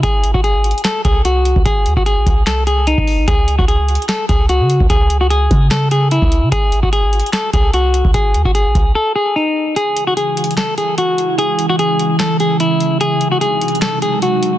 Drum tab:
HH |x-----x-----x-----x-x-x-x-----x-----x-----x-----|x-----x-----x-----x-----x-----x-----x-----o-----|x-----x-----x-----x-x-x-x-----x-----x-----x-----|x-----x-----x-----x-----x-----x-----x-----x-----|
CP |------------------------x-----------------------|------------------------x-----------------------|------------------------x-----------------------|------------------------x-----------------------|
SD |------------------------o-----------------------|------------------------o-----------------------|------------------------o-----------------------|------------------------o-----------------------|
BD |o--------o--------------------o--------------o--|o--------o--------o--------------------o--------|o--------o--------------------o--------------o--|o-----------------o--------------------o--------|

HH |x-----x-----x-----x-x-x-x-----x-----x-----x-----|x-----x-----x-----x-----------------------------|x-----x-----x-----x-x-x-x-----x-----x-----x-----|x-----x-----x-----x-----x-----x-----x-----x-----|
CP |------------------------x-----------------------|------------------------------------------------|------------------------x-----------------------|------------------------x-----------------------|
SD |------------------------o-----------------------|------------------------------------------------|------------------------o-----------------------|------------------------o-----------------------|
BD |o--------o--------------------o--------------o--|o--------o--------o-----------------------------|------------------------------------------------|------------------------------------------------|

HH |x-----x-----x-----x-x-x-x-----x-----x-----x-----|
CP |------------------------x-----------------------|
SD |------------------------o-----------------------|
BD |------------------------------------------------|